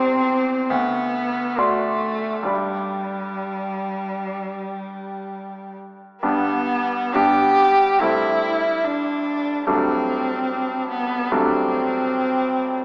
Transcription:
0.00 0.73 E2 soft
0.00 0.72 C4 medium
0.00 0.66 G4 soft
0.00 0.66 C5 soft
0.00 0.66 C6 soft
0.70 1.55 D2 soft
0.70 1.60 B3 medium
1.58 2.50 A3 medium
1.58 2.45 F#4 soft
1.58 2.44 D5 soft
1.58 2.46 C6 soft
2.43 6.16 G2 soft
2.43 6.17 G4 soft
2.43 6.17 D5 soft
2.43 6.18 B5 soft
2.49 5.77 G3 soft
6.23 7.13 G2 soft
6.23 7.16 B3 medium
6.23 7.13 B3 soft
6.23 7.13 D4 soft
6.23 7.13 G4 soft
7.15 7.99 G2 soft
7.15 7.99 B3 soft
7.15 7.99 D4 soft
7.15 8.02 G4 medium
7.15 7.99 G4 soft
8.00 9.64 G2 soft
8.00 9.64 A3 soft
8.00 9.64 C4 soft
8.00 8.86 E4 medium
8.00 9.64 E4 soft
8.84 9.68 D4 medium
9.67 11.28 G2 soft
9.67 11.28 F#3 soft
9.67 11.28 A3 soft
9.67 10.90 C4 medium
9.67 11.28 D4 soft
10.91 11.33 B3 medium
11.31 12.85 G2 soft
11.31 12.85 F#3 soft
11.31 12.85 A3 soft
11.31 12.85 C4 medium
11.31 12.85 D4 soft

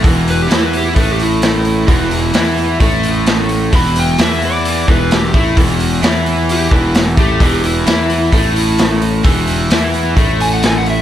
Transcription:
0.03 0.47 E1 medium
0.03 0.49 E2 loud
0.03 0.48 E3 loud
0.03 kick loud
0.03 open hi-hat medium
0.27 0.40 B4 medium
0.27 open hi-hat medium
0.42 0.52 G4 medium
0.49 0.93 E2 medium
0.49 0.95 E3 medium
0.49 0.96 E4 medium
0.49 snare loud
0.49 open hi-hat medium
0.54 0.63 E4 medium
0.65 0.75 B4 medium
0.73 0.87 G4 medium
0.73 open hi-hat medium
0.88 0.98 E4 medium
0.96 1.85 A1 medium
0.96 1.88 A2 medium
0.96 1.88 A3 loud
0.96 1.09 B4 medium
0.96 kick medium
0.96 open hi-hat medium
1.12 1.21 G4 medium
1.20 1.43 E4 medium
1.20 open hi-hat soft
1.42 2.78 E4 medium
1.42 snare loud
1.42 open hi-hat medium
1.65 open hi-hat medium
1.88 2.31 E1 medium
1.88 2.34 E2 loud
1.88 2.33 E3 loud
1.88 kick loud
1.88 open hi-hat medium
2.11 open hi-hat medium
2.34 2.77 E2 medium
2.34 2.80 E3 medium
2.34 2.80 E4 medium
2.34 snare loud
2.34 open hi-hat medium
2.57 open hi-hat soft
2.80 3.69 A1 medium
2.80 3.72 A2 loud
2.80 3.72 A3 loud
2.80 kick medium
2.80 open hi-hat medium
3.03 open hi-hat soft
3.26 snare loud
3.26 open hi-hat medium
3.49 open hi-hat medium
3.73 4.16 E1 medium
3.73 4.18 E2 medium
3.73 4.17 E3 loud
3.73 3.96 B5 loud
3.73 kick loud
3.73 open hi-hat medium
3.96 4.20 G5 medium
3.96 open hi-hat medium
4.18 4.84 E2 medium
4.18 4.87 E3 medium
4.18 4.87 E4 medium
4.18 4.43 E5 medium
4.18 snare loud
4.18 open hi-hat medium
4.42 4.88 D5 medium
4.42 open hi-hat medium
4.65 open hi-hat medium
4.88 5.31 E1 medium
4.88 5.33 E2 medium
4.88 5.33 E3 medium
4.88 5.12 B4 medium
4.88 kick loud
4.88 open hi-hat soft
5.11 5.35 G4 medium
5.11 snare loud
5.11 open hi-hat medium
5.34 5.55 A1 medium
5.34 5.56 A2 medium
5.34 5.56 A3 loud
5.34 5.58 E4 medium
5.34 kick loud
5.34 open hi-hat medium
5.56 6.00 E1 medium
5.56 6.02 E2 loud
5.56 6.01 E3 loud
5.56 kick loud
5.56 open hi-hat medium
5.80 open hi-hat medium
6.02 6.67 E2 medium
6.02 6.70 E3 medium
6.02 6.71 E4 medium
6.02 snare loud
6.02 open hi-hat medium
6.26 open hi-hat soft
6.49 6.72 G4 medium
6.49 open hi-hat medium
6.71 7.14 E1 medium
6.71 7.17 E2 medium
6.71 7.17 E3 medium
6.71 6.95 E4 medium
6.71 kick medium
6.71 open hi-hat soft
6.95 snare loud
6.95 open hi-hat medium
7.17 7.39 A1 medium
7.17 7.40 A2 medium
7.17 7.40 A3 loud
7.17 7.63 G4 medium
7.17 kick loud
7.17 open hi-hat medium
7.40 7.83 E1 medium
7.40 7.86 E2 medium
7.40 7.85 E3 loud
7.40 kick loud
7.40 open hi-hat medium
7.64 8.98 E4 medium
7.64 open hi-hat medium
7.86 8.29 E2 medium
7.86 8.32 E3 medium
7.86 8.32 E4 medium
7.86 snare loud
7.86 open hi-hat medium
8.10 open hi-hat medium
8.32 9.20 A1 medium
8.32 9.24 A2 medium
8.32 9.24 A3 medium
8.32 kick medium
8.32 open hi-hat medium
8.56 open hi-hat medium
8.78 snare loud
8.78 open hi-hat medium
9.02 open hi-hat medium
9.24 9.67 E1 medium
9.24 9.70 E2 medium
9.24 9.70 E3 loud
9.24 kick loud
9.24 open hi-hat medium
9.47 open hi-hat medium
9.70 10.13 E2 medium
9.70 10.16 E3 medium
9.70 10.16 E4 medium
9.70 snare loud
9.70 open hi-hat medium
9.94 open hi-hat medium
10.16 11.02 A1 medium
10.16 11.02 A2 medium
10.16 11.02 A3 loud
10.16 kick loud
10.16 open hi-hat medium
10.40 10.52 G#5 loud
10.40 open hi-hat medium
10.54 10.64 F#5 medium
10.63 10.75 G#5 medium
10.63 snare loud
10.63 open hi-hat medium
10.78 10.87 F#5 medium
10.86 10.99 E5 medium
10.86 open hi-hat medium

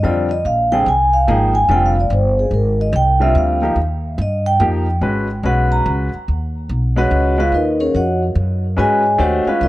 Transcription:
0.03 0.44 F2 medium
0.03 0.28 D3 medium
0.03 0.28 G3 medium
0.03 0.28 C4 medium
0.03 0.29 F4 medium
0.03 0.31 D5 medium
0.31 0.45 D#5 medium
0.45 0.85 A#1 medium
0.45 0.72 F5 medium
0.72 0.85 D3 medium
0.72 0.85 G3 medium
0.72 0.85 C4 medium
0.72 0.86 G#4 medium
0.72 0.86 G5 loud
0.86 1.27 C2 medium
0.86 1.14 G#5 loud
1.14 1.27 F5 loud
1.28 1.68 G#1 medium
1.28 1.52 F3 medium
1.28 1.53 A#3 medium
1.28 1.53 D#4 medium
1.28 1.53 G#4 medium
1.28 1.56 G5 medium
1.55 1.69 G#5 loud
1.69 2.09 F1 loud
1.69 1.94 D3 medium
1.69 1.94 G3 medium
1.69 1.94 C4 medium
1.69 1.95 F4 medium
1.69 1.84 G5 loud
1.86 1.98 F5 medium
2.00 2.12 D5 medium
2.10 2.50 G1 loud
2.10 2.39 C5 medium
2.39 2.53 G#4 medium
2.51 2.92 G#1 medium
2.51 2.80 A#4 medium
2.81 2.94 D#5 medium
2.93 3.34 C2 loud
2.93 3.22 G5 loud
3.20 3.60 D3 medium
3.20 3.60 G3 medium
3.20 3.60 C4 medium
3.20 3.60 F4 medium
3.20 3.35 E5 loud
3.35 3.75 D2 medium
3.35 3.75 F5 medium
3.62 3.75 F3 medium
3.62 3.75 A#3 medium
3.62 3.76 D#4 medium
3.62 3.76 G4 medium
3.76 4.17 D#2 medium
4.18 4.59 G2 loud
4.18 4.47 D#5 medium
4.46 4.60 G5 loud
4.60 5.01 F2 loud
4.60 4.85 F3 medium
4.60 4.85 A#3 medium
4.60 4.85 D#4 medium
4.60 4.86 G4 medium
5.01 5.42 G#1 medium
5.01 5.26 G#3 medium
5.01 5.27 C#4 medium
5.01 5.27 F#4 medium
5.01 5.27 B4 medium
5.43 5.84 B1 medium
5.43 6.07 G#3 medium
5.43 6.08 C#4 medium
5.43 6.08 F#4 medium
5.43 6.08 B4 medium
5.43 5.71 F#5 medium
5.72 5.80 A#5 medium
5.86 6.11 C#2 medium
6.14 muted upright bass stroke soft
6.28 6.68 D#2 medium
6.69 7.10 B1 medium
6.96 7.35 G#3 medium
6.96 7.35 C#4 medium
6.96 7.36 F#4 medium
6.96 7.37 F#4 medium
6.96 7.36 B4 medium
6.96 7.36 C#5 medium
6.96 7.36 D#5 medium
6.96 7.36 F#5 medium
7.11 7.51 C#2 medium
7.38 7.51 G#3 medium
7.38 7.51 C#4 medium
7.38 7.53 F4 medium
7.38 7.51 F#4 medium
7.38 7.52 B4 medium
7.38 7.53 F5 medium
7.52 7.93 D#2 medium
7.52 7.80 D#4 medium
7.52 7.79 A#4 medium
7.52 7.80 B4 medium
7.52 7.80 D#5 medium
7.80 7.94 C#4 medium
7.80 7.94 G#4 medium
7.80 7.94 A#4 medium
7.80 7.94 C#5 medium
7.95 8.35 F2 medium
7.95 8.22 F#4 medium
7.95 8.22 C#5 medium
7.95 8.22 D#5 medium
7.95 8.22 F#5 medium
8.35 8.76 F#2 medium
8.77 9.18 G#2 medium
8.77 9.02 G#3 medium
8.77 9.02 C#4 medium
8.77 9.02 F#4 medium
8.77 9.18 G#4 medium
8.77 9.03 B4 medium
8.77 9.18 C#5 medium
8.77 9.17 D#5 medium
8.77 9.17 G#5 loud
9.18 9.45 D#2 medium
9.18 9.44 A3 medium
9.18 9.44 D4 medium
9.18 9.47 F#4 medium
9.18 9.44 G4 medium
9.18 9.44 C5 medium
9.18 9.47 C#5 medium
9.18 9.46 D#5 medium
9.18 9.46 F#5 medium
9.46 9.68 G#3 medium
9.46 9.68 C#4 medium
9.46 9.61 F4 medium
9.46 9.68 F#4 medium
9.46 9.68 B4 medium
9.46 9.61 F5 medium
9.46 muted upright bass stroke soft
9.61 9.68 C#2 medium
9.61 9.68 D#4 medium
9.61 9.68 A#4 medium
9.61 9.68 B4 medium
9.61 9.68 D#5 medium

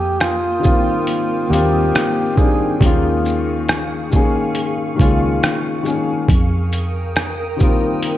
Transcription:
0.00 0.88 F2 loud
0.00 2.77 A#3 medium
0.00 0.22 G4 medium
0.00 2.77 G5 medium
0.00 2.77 D#6 medium
0.20 1.52 F4 loud
0.20 cross-stick loud
0.20 closed hi-hat medium
0.59 1.26 D#3 medium
0.59 1.27 G3 medium
0.59 1.28 A#3 medium
0.64 1.29 C4 medium
0.64 1.29 F4 medium
0.64 kick loud
0.64 shaker medium
1.07 closed hi-hat medium
1.48 1.90 D#2 loud
1.48 2.14 D#3 medium
1.48 2.15 G3 medium
1.48 2.16 A#3 medium
1.48 2.40 G4 loud
1.53 2.16 C4 medium
1.53 2.17 F4 loud
1.53 closed hi-hat medium
1.53 shaker medium
1.95 cross-stick loud
1.95 closed hi-hat medium
2.35 2.70 D#3 medium
2.35 2.71 G3 medium
2.35 2.72 A#3 medium
2.35 2.72 C4 medium
2.35 2.81 G#4 medium
2.35 kick loud
2.35 shaker soft
2.41 2.73 D4 medium
2.80 4.36 D#2 loud
2.80 3.71 D#3 loud
2.80 3.72 G#3 medium
2.80 3.72 A#3 medium
2.80 6.25 G#4 medium
2.80 6.25 F5 medium
2.80 6.25 C#6 medium
2.80 kick loud
2.80 closed hi-hat medium
2.84 3.73 C#4 medium
2.84 3.74 F4 loud
3.25 shaker medium
3.69 cross-stick loud
3.69 closed hi-hat soft
4.10 4.76 D#3 medium
4.10 4.76 G#3 medium
4.10 4.77 A#3 medium
4.10 kick loud
4.10 shaker medium
4.14 4.78 C#4 medium
4.14 4.78 G#4 medium
4.55 closed hi-hat medium
4.95 5.61 D#3 medium
4.95 5.62 G#3 medium
4.95 5.63 A#3 medium
4.99 5.39 C#2 medium
4.99 5.63 C#4 medium
4.99 5.64 F4 medium
4.99 kick medium
4.99 closed hi-hat medium
4.99 shaker medium
5.43 cross-stick loud
5.43 closed hi-hat medium
5.82 6.27 D#3 medium
5.82 6.27 G#3 medium
5.82 6.28 A#3 medium
5.82 shaker soft
5.86 6.29 C#4 medium
5.86 6.30 G#4 medium
6.29 7.83 F2 loud
6.29 8.18 A#4 medium
6.29 8.18 G5 medium
6.29 8.18 D#6 medium
6.29 kick loud
6.29 closed hi-hat medium
6.73 closed hi-hat medium
6.73 shaker medium
7.16 cross-stick loud
7.16 closed hi-hat medium
7.57 8.18 D#3 medium
7.57 8.18 G3 medium
7.57 8.18 A#3 medium
7.57 shaker medium
7.61 8.18 C4 medium
7.61 8.18 F4 medium
7.61 kick loud
8.03 closed hi-hat medium

